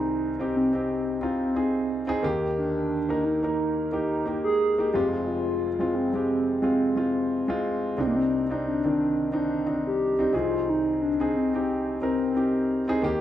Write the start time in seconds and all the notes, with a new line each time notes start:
Already playing: C2 C3 C4 D#4 G#4
0.39 C4 D#4 G4
0.56 C4
0.73 C4 D#4 G4
1.21 C4 D#4 F4
1.55 C4 D#4 G#4
2.07 C4 D#4 G#4
2.23 D#2 D#3 A#3 G4
2.58 D4
3.09 A#3 D#4 A#4
3.25 D#4
3.43 A#3 D#4 A#4
3.92 A#3 D#4 G4
4.26 A#3 D#4 G4
4.44 G#4
4.78 A#3 D#4 G4
4.93 F1 F2 G#3 C4 F4 G4
5.26 F4
5.79 G#3 C4 F4
5.95 C4
6.14 G#3 C4 G4
6.62 G#3 C4 F4
6.96 G#3 C4 F4
7.48 G#3 C4 F4
7.97 C2 C3 C4 D4 D#4
8.07 A#3
8.16 C4
8.50 C4 D4 D#4
8.67 D4
8.84 D#3 C4 D4
9.32 C4 D4 D#4
9.66 C4 D4 D#4
9.87 G4
10.19 C4 D4 D#4
10.33 C2 C3 C4 D#4 F4 G#4
10.69 D#4
11.02 D4
11.20 C4 D#4 G#4
11.37 C4
11.54 C4 D#4 G4
12.02 C4 D#4 A#4
12.35 C4 D#4 G4
12.88 C4 D#4 G#4
13.02 D#2 D#3 A#3 G4